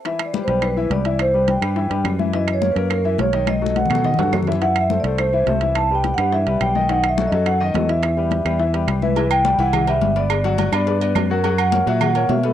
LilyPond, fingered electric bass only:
\new Staff \with { instrumentName = "Fingered electric bass" } { \clef bass \time 4/4 \key e \minor \tempo 4 = 211 r4. b,,4. c,4~ | c,4. g,4 g,8 fis,4~ | fis,4. fis,4. b,,4~ | b,,4. b,4 g,8 fis,4~ |
fis,4. c,4. c,4~ | c,4. g,4 c,8 b,,4~ | b,,4. fis,4. e,4~ | e,4. e,4. c,4~ |
c,4. c,4. g,,4~ | g,,4. g,4. fis,4~ | fis,4. ais,4. b,4 | }